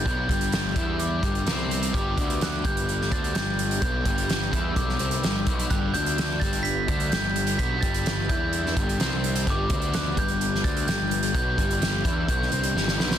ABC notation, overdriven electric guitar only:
X:1
M:4/4
L:1/8
Q:1/4=128
K:G
V:1 name="Overdriven electric guitar" clef=bass
[B,,B,] [G,,G,]2 [E,E]2 [G,,G,] [C,C]2 | [G,,G,] [D,D]2 [G,,G,]2 [D,D] [G,,G,]2 | [B,,B,] [G,,G,]2 [E,E] [B,,B,] [C,C] [G,,G,] [B,,B,] | [G,,G,] [D,D]2 [G,,G,]2 [D,D] [G,,G,]2 |
[B,,B,] [G,,G,]2 [E,E]2 [G,,G,] [C,C]2 | [G,,G,] [D,D]2 [G,,G,]2 [D,D] [G,,G,]2 | [B,,B,] [G,,G,]2 [E,E] [B,,B,] [C,C] [G,,G,] [B,,B,] |]